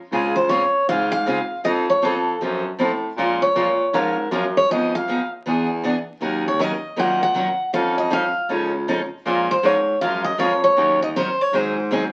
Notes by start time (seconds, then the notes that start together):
0.12 C#2 C#3 G#3 C4 F4 G#4
0.36 C5
0.49 C#3 G#3 C4 F4 G#4 C#5
0.89 G#2 C#3 G#3 C4 F4 G#4 F5
1.12 F5
1.26 C#3 G#3 C4 F4 G#4
1.64 F2 F3 C4 D#4 A4 D#5
1.90 C#5
2.02 F2 F3 C4 D#4 A4
2.41 F#2 F3 C4 D#4 A4
2.79 A2 F3 C4 D#4 A4
3.17 A#2 F3 G#3 C#4 F4 A#4
3.42 C#5
3.55 A#2 F3 G#3 C#4 F4 A#4
3.93 G#2 F3 G#3 C#4 F4 A#4
4.30 F#2 F3 G#3 C#4 F4 A#4
4.57 C#5
4.69 F2 F3 B3 D#4 G#4 D#5
4.95 F5
5.08 F3 B3 D#4 G#4
5.46 E2 E3 B3 D4 G#4
5.84 E3 B3 D4 G#4
6.21 D#2 D#3 F#3 C#4 D#4 A#4
6.48 C#5
6.59 D#3 F#3 C#4 D#4 A#4 D#5
6.96 A#2 D#3 F#3 C#4 D#4 A#4 F#5
7.23 F#5
7.34 D#3 F#3 C#4 D#4 A#4
7.73 F2 F3 C#4 D#4 A4 F5
7.98 D#5
8.10 F3 C#4 D#4 A4 F5
8.49 C#2 F3 C#4 D#4 A4
8.88 F3 C#4 D#4 A4
9.26 A#2 F3 G#3 C#4 F4 A#4
9.51 C5
9.63 G#2 F3 G#3 C#4 F4 A#4 C#5
10.01 F#2 F3 G#3 C#4 F4 A#4 F5
10.24 D#5
10.38 F2 F3 G#3 C#4 F4 A#4 C#5
10.64 C#5
10.76 D#2 D#3 F#3 C#4 D#4 A#4
11.02 D#5
11.16 D#3 F#3 C#4 D#4 A#4 C5
11.41 C#5
11.52 G#2 D#3 F#3 C4 D#4 G#4 C5
11.91 D#3 F#3 C4 D#4 G#4